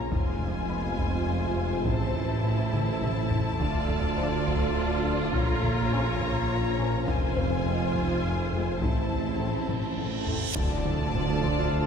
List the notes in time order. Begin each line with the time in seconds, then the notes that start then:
Already playing: A#1 F3 C#4 F4 A#4 A#5 C6
0.11 F1 F2 C3 G#3 F4 G#4 C5 G#5, taiko
0.41 F2, taiko low
0.69 F2 B3 B5
0.99 F2, taiko
1.28 F2
1.57 F2 F4
1.85 A1 A2 E3 A3 E4 A4 E5 A5, taiko
2.15 A2, taiko low
2.44 A2
2.73 A2, taiko mid
3.01 A2, taiko low-mid
3.31 A2, taiko low
3.59 D1 D2 D3 D4 F4 D5, taiko
3.89 D2, taiko low
4.17 D2 F3 D4
4.47 D2, taiko
4.76 D2
5.04 D2 F3 D4
5.33 A#1 A#2 F3 C#4 A#4 C#5 A#5, taiko
5.63 A#2, taiko low
5.92 A#2 F3 C#4
6.21 A#2 A#4, taiko
6.50 A#2
6.78 A#2 F3 C#4
7.07 F1 F2 C4 F4 G#4 C5 G#5, taiko
7.36 F2 C4 C5, taiko low
7.65 F2 G#3 C4
7.95 F2, taiko
8.24 F2
8.52 F2 G#3 C4
8.81 A1 A2 A3 E4 A4 A5, taiko, reverse cymbal
9.11 A2, taiko low
9.39 A2 A3 C4
9.69 A2, taiko low-mid
9.98 A2, taiko low-mid
10.27 A2 A3 C4, taiko low
10.55 D1 D2 D3 F3 A3 D4 F4 A4 D5 A5, taiko, impact
10.85 D3, taiko low-mid
11.14 D2, taiko low-mid
11.43 D2 C6, taiko
11.73 D3